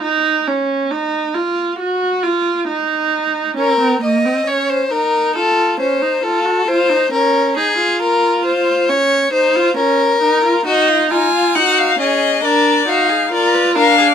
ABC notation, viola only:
X:1
M:4/4
L:1/16
Q:1/4=68
K:Bbphr
V:1 name="Viola"
E2 D2 E2 F2 G2 F2 E4 | D =C B, C D2 E2 F2 D E F G F E | D2 E F4- F D2 E F D2 E F | E2 F2 E2 D2 =D2 E2 F2 D2 |]